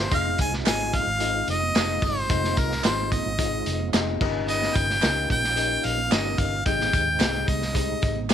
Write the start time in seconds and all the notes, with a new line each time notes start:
Already playing: C5
0.11 F1 G#3 C4 D#4 F4 G#4 D#5 F5, kick, closed hi-hat, tambourine, muted conga, low conga
0.25 high conga
0.38 C2 G#5, kick, closed hi-hat, tambourine
0.53 snare
0.65 G#1 C4 D#4 F4 G#4 D#5 G#5, snare, clap, closed hi-hat, tambourine, high conga
0.93 F5, kick, closed hi-hat, muted conga, high conga, low conga
1.07 G#1
1.20 C4 D#4 F4 G#4 D#5, closed hi-hat, tambourine, muted conga
1.48 F1 D#5, closed hi-hat, tambourine, muted conga
1.61 high conga
1.75 F1 C4 D#4 F4 G#4 D#5, snare, clap, closed hi-hat, tambourine
1.89 high conga
2.02 G1 C5, kick, open hi-hat, tambourine, muted conga, low conga
2.30 F1 C4 D#4 F4 G#4 D#5, kick, closed hi-hat, tambourine, muted conga, low conga
2.43 snare, high conga
2.57 C2 A#4, kick, closed hi-hat, tambourine
2.72 snare
2.83 G#1 C4 D#4 F4 G#4 C5 D#5, snare, clap, closed hi-hat, tambourine, muted conga, high conga
3.12 D#5, kick, closed hi-hat, tambourine, muted conga, high conga, low conga
3.26 G#1
3.39 C4 D#4 F4 G#4 D#5, kick, closed hi-hat, tambourine
3.66 F1, closed hi-hat, tambourine, muted conga
3.80 high conga
3.93 F1 C4 D#4 F4 G#4 D#5, snare, clap, closed hi-hat, tambourine
4.07 high conga
4.21 G1 G2 A#3 C#4 D#4 G4 A#4 D#5, kick, tambourine, crash, low conga
4.48 D#5, closed hi-hat, tambourine, low conga
4.62 snare, high conga
4.76 G1 G5, kick, closed hi-hat, tambourine
4.90 snare
5.02 C#2 C#4 D#4 G4 A#4 D#5, snare, clap, closed hi-hat, tambourine, muted conga, high conga
5.30 A#1 G5, kick, closed hi-hat, tambourine, high conga, low conga
5.44 snare
5.56 C#4 D#4 G4 A#4 D#5, closed hi-hat, tambourine, muted conga
5.83 A#1 F5, closed hi-hat, tambourine, muted conga
5.98 high conga
6.11 G1 C#4 D#4 G4 A#4 D#5, snare, clap, closed hi-hat, tambourine, muted conga
6.25 high conga
6.38 G1 F5, kick, closed hi-hat, tambourine, low conga
6.65 G#1 G#2 G#3 C4 D#4 G4 G#4 D#5 G5, kick, closed hi-hat, tambourine, muted conga, low conga
6.79 snare, high conga
6.93 D#2, kick, closed hi-hat, tambourine
7.20 C2 C4 D#4 G4 G#4 D#5, snare, clap, closed hi-hat, tambourine, muted conga, high conga
7.48 C2 D#5, kick, closed hi-hat, tambourine, muted conga, high conga, low conga
7.62 snare
7.74 C4 D#4 G4 G#4 D#5, kick, closed hi-hat, muted conga
8.01 G#1, kick, closed hi-hat, tambourine, muted conga
8.16 high conga
8.29 C4 D#4 G4 G#4 D#5, snare, clap, closed hi-hat, tambourine